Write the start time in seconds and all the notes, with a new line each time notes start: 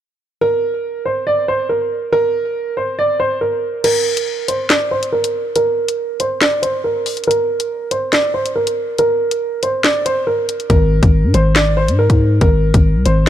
0.41 A#4
1.05 C5
1.27 D5
1.48 C5
1.69 A#4
2.13 A#4
2.77 C5
2.99 D5
3.20 C5
3.41 A#4
3.84 A#4, closed hi-hat, crash
4.17 closed hi-hat
4.48 C5, closed hi-hat
4.70 D5, snare, clap, closed hi-hat
4.91 C5
5.03 closed hi-hat
5.12 A#4
5.24 closed hi-hat
5.56 A#4, closed hi-hat
5.88 closed hi-hat
6.20 C5, closed hi-hat
6.41 D5, snare, clap, closed hi-hat
6.62 C5, closed hi-hat
6.84 A#4
7.06 open hi-hat
7.17 closed hi-hat
7.24 A#4, closed hi-hat
7.31 closed hi-hat
7.60 closed hi-hat
7.91 C5, closed hi-hat
8.13 D5, snare, clap, closed hi-hat
8.34 C5
8.46 closed hi-hat
8.56 A#4
8.67 closed hi-hat
8.98 A#4, closed hi-hat
9.31 closed hi-hat
9.63 C5, closed hi-hat
9.84 D5, snare, clap, closed hi-hat
10.06 C5, closed hi-hat
10.27 A#4
10.49 closed hi-hat
10.60 closed hi-hat
10.70 G#1 A#4, kick, closed hi-hat
11.03 G#1, kick, closed hi-hat
11.24 G#2
11.34 G#1 C5, closed hi-hat
11.55 D5, snare, clap, closed hi-hat
11.77 C5
11.88 G#2, closed hi-hat
11.99 A#4
12.10 G#2, kick, closed hi-hat
12.41 G#1 A#4, kick, closed hi-hat
12.74 G#1, kick, closed hi-hat
12.96 C2
13.06 G#1 C5, closed hi-hat